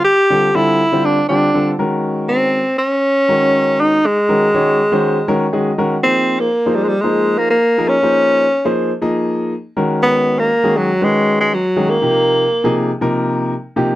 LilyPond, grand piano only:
\new Staff \with { instrumentName = "Grand piano" } { \time 4/4 \key aes \mixolydian \tempo 4 = 120 << { r1 | r1 | r2 r8 des''8 ees''8 ges''8 | \key des \lydian r1 |
r1 | r1 | r1 | } \\ { r8 <d g c' f' a'>16 r16 <d g c' f' a'>8 r16 <d g c' f' c''>8 r16 <d g c' f' g'>16 r16 <d g c' f' a'>16 r16 <ees aes des' ges' bes'>8~ | <ees aes des' ges' bes'>4 r4. <ees aes des' ges' bes'>4~ <ees aes des' ges' bes'>16 r16 | r8 <ees aes des' ges' bes'>16 r16 <ees aes des' ges' des''>8 r16 <ees aes des' ges' c''>8 r16 <ees aes des' ges' bes'>16 r16 <ees aes des' ges' aes'>16 r16 <ees aes des' ges' bes'>16 r16 | <f bes ees' aes' c''>8. r8 <f bes ees' aes' c''>8 r16 <f bes ees' aes' c''>4 r8 <f bes ees' aes' bes'>16 r16 |
<f bes ees' aes' c''>8. r8 <f bes ees' aes' c''>8 r16 <f bes ees' aes' ees''>4 r8 <ees aes des' ges' bes'>8~ | <ees aes des' ges' bes'>4 r16 <ees aes des' ges' aes'>8 r16 <ees aes des' ges' ces''>4 r8 <ees aes des' ges' aes'>16 r16 | <c f bes ees' g'>8. r8 <c f bes ees' aes'>8 r16 <c f bes ees' bes'>4 r8 <c f bes ees' g'>16 r16 | } >> }